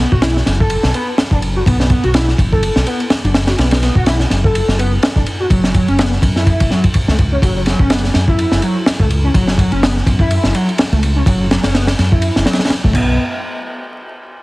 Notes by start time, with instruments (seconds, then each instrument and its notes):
0.00 analog synth lead B3
0.12 fingered electric bass B1, analog synth lead F#4, kick
0.22 analog synth lead E4, snare, ride
0.37 snare
0.46 fingered electric bass F#1, snare, ride
0.60 analog synth lead A4, kick
0.70 ride
0.83 fingered electric bass B1, snare
0.94 analog synth lead B3, ride
1.18 snare, ride
1.31 fingered electric bass F#1, analog synth lead D4, kick
1.42 ride
1.56 analog synth lead F#4
1.66 fingered electric bass B1, analog synth lead B3, kick, ride
1.80 analog synth lead B3, snare
1.90 analog synth lead B3, kick, ride
2.04 fingered electric bass B1, analog synth lead F#4, ride
2.14 analog synth lead E4, snare, ride
2.28 snare
2.38 fingered electric bass F#1, kick, ride
2.52 analog synth lead A4, kick
2.63 ride
2.76 fingered electric bass B1, snare
2.86 analog synth lead B3, ride
3.00 ride
3.10 snare, ride
3.24 fingered electric bass F#1, analog synth lead D4, ride
3.34 snare, ride
3.47 analog synth lead F#4, snare, ride
3.58 fingered electric bass B1, analog synth lead B3, snare, ride
3.71 analog synth lead B3, snare, ride
3.82 analog synth lead B3, snare, ride
3.95 fingered electric bass B1, analog synth lead F#4, kick
4.06 analog synth lead E4, snare, ride
4.19 snare
4.30 fingered electric bass F#1, snare, ride
4.44 analog synth lead A4, kick
4.55 ride
4.68 fingered electric bass F#1, snare
4.79 analog synth lead B3, ride
5.03 snare, ride
5.16 fingered electric bass F#1, analog synth lead D4, kick
5.26 ride
5.40 analog synth lead F#4
5.50 fingered electric bass F#1, analog synth lead F#3, kick, ride
5.64 analog synth lead F#3, snare
5.74 analog synth lead F#3, kick, ride
5.88 fingered electric bass F#1, analog synth lead C#4, ride
5.99 analog synth lead B3, snare, ride
6.12 snare
6.22 fingered electric bass F#2, kick, ride
6.36 analog synth lead E4, snare
6.46 kick, ride
6.60 fingered electric bass F#1, kick, ride
6.70 analog synth lead F#3, snare
6.84 kick, ride
6.94 kick, ride
7.08 fingered electric bass C#2, analog synth lead A3, snare
7.19 kick, ride
7.32 analog synth lead C#4
7.42 fingered electric bass F#1, analog synth lead F#3, kick, ride
7.56 analog synth lead F#3
7.66 analog synth lead F#3, snare, ride
7.79 fingered electric bass F#1, analog synth lead C#4, kick
7.90 analog synth lead B3, snare, ride
8.04 snare
8.14 fingered electric bass F#2, snare, ride
8.28 analog synth lead E4, kick
8.39 ride
8.52 fingered electric bass F#1, snare
8.62 analog synth lead F#3, ride
8.86 snare, ride
9.00 fingered electric bass C#2, analog synth lead A3, kick
9.10 ride
9.24 analog synth lead C#4
9.34 fingered electric bass F#1, analog synth lead F#3, kick, ride
9.48 analog synth lead F#3, snare
9.58 analog synth lead F#3, kick, ride
9.72 fingered electric bass F#1, analog synth lead C#4, ride
9.83 analog synth lead B3, snare, ride
9.97 snare
10.06 fingered electric bass F#2, kick, ride
10.19 analog synth lead E4, kick
10.31 ride
10.44 fingered electric bass F#1, snare
10.54 analog synth lead F#3, ride
10.69 ride
10.78 snare, ride
10.92 fingered electric bass C#2, analog synth lead A3, ride
11.03 ride
11.16 analog synth lead C#4
11.26 fingered electric bass F#1, analog synth lead F#3, kick, ride
11.40 analog synth lead F#3
11.51 analog synth lead F#3, snare, ride
11.64 fingered electric bass F#1, analog synth lead C#4, snare, ride
11.74 analog synth lead B3, snare, ride
11.87 snare, ride
11.99 fingered electric bass F#2, snare, ride
12.12 analog synth lead E4, kick
12.22 ride
12.36 fingered electric bass F#1, snare
12.46 analog synth lead F#3, snare, ride
12.53 snare, ride
12.59 snare, ride
12.65 snare, ride
12.70 snare, ride
12.84 fingered electric bass F#1, analog synth lead A3, kick
12.93 fingered electric bass B1, analog synth lead B3, kick, crash